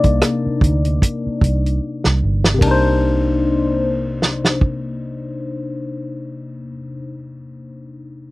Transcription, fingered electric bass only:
0.05 0.20 C2 medium
0.46 muted fingered electric bass stroke soft
0.62 0.98 D2 medium
1.27 muted fingered electric bass stroke soft
1.43 1.78 C2 medium
2.06 2.21 C2 medium
2.24 2.59 G1 medium
2.62 6.62 C2 medium

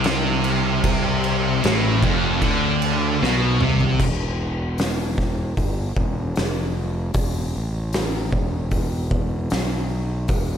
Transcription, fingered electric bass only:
0.00 1.60 C2 loud
1.64 2.01 A1 medium
2.03 2.40 F1 medium
2.42 3.17 D2 loud
3.22 3.59 B1 loud
3.62 3.98 C2 loud
4.00 5.54 E1 medium
5.57 5.94 G1 medium
5.96 6.33 E1 medium
6.38 7.12 F1 loud
7.15 7.52 E1 medium
7.56 8.31 A1 loud
8.33 9.48 E1 medium
9.52 10.27 B1 medium
10.29 10.57 E1 medium

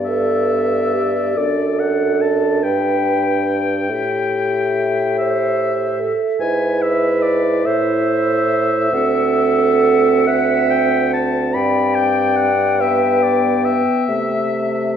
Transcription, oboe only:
0.05 1.39 E5 medium
1.37 1.81 D5 soft
1.79 2.23 F#5 soft
2.21 2.65 A5 soft
2.63 5.17 G5 medium
5.18 6.14 E5 medium
6.40 6.83 G#5 medium
6.82 7.24 E5 soft
7.22 7.67 D5 soft
7.65 10.26 E5 medium
10.27 10.69 F#5 medium
10.70 11.12 G5 medium
11.13 11.55 A5 medium
11.54 11.96 B5 medium
11.95 12.38 G5 medium
12.36 12.82 F#5 medium
12.81 13.24 E5 medium
13.23 13.66 D5 soft
13.65 14.97 E5 medium

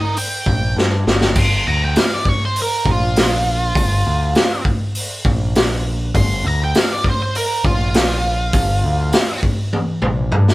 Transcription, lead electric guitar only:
0.00 0.14 A#4 medium
0.00 0.15 G5 medium
0.18 0.75 G5 loud
1.39 1.66 C6 loud
1.68 1.84 A#5 medium
1.84 2.00 G5 medium
2.00 2.12 F5 medium
2.14 2.29 D5 medium
2.29 2.42 C#5 medium
2.45 2.58 C5 medium
2.62 2.88 A#4 medium
2.91 4.64 F4 loud
6.16 6.44 C6 loud
6.48 6.61 A#5 medium
6.64 6.78 G5 medium
6.78 6.91 F5 loud
6.93 7.06 D5 loud
7.10 7.21 C5 loud
7.22 7.36 C5 loud
7.36 7.65 A#4 loud
7.65 9.40 F4 loud

